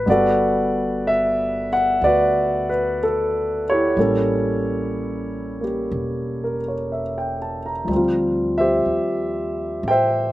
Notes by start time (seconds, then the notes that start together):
0.06 G1 G3 B3 B4 D5 F#5
0.10 F#4 A4
1.07 E5
1.73 F#5
2.01 D2 D5
2.06 F#4 B4
2.69 B4
3.03 A4
3.70 E4 G4 C#5
3.97 A1 G3 A#3 C#4 A4
5.61 A#3 G4
5.91 E1
6.44 A#4
6.68 C#5
6.92 E5
7.18 G5
7.42 A5
7.66 A#5
7.85 D2 F3
7.89 G3 C4
7.96 F4
8.58 G4 C5 E5
8.86 D#2
9.83 A1
9.88 C5 E5 G5